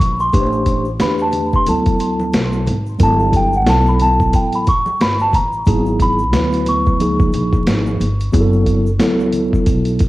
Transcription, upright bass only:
0.00 A#1
0.34 A1
1.01 E2
1.67 D2
2.34 B1
2.67 G#1
3.00 G1
3.67 B1
4.34 A1
4.87 muted upright bass stroke
5.00 G1
5.33 A1
5.67 G#1
6.34 D2
7.01 C#2
7.34 A#1
7.67 G#1
8.01 G1
8.34 F#1
9.01 C#2
9.67 B1

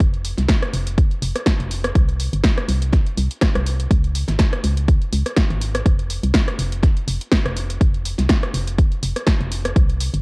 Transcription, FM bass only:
0.00 F1
0.38 C2
0.73 F1
1.22 F1
1.60 F1
1.95 C2
2.33 G1
2.68 C2
3.17 C2
3.55 C2
3.91 C#2
4.28 G#1
4.64 C#2
5.13 C#2
5.50 G#1
5.86 F1
6.23 C2
6.59 F1
7.08 F1
7.45 F1
7.81 F1
8.19 C2
8.54 F1
9.03 F1
9.41 F1
9.76 C2
10.14 G1

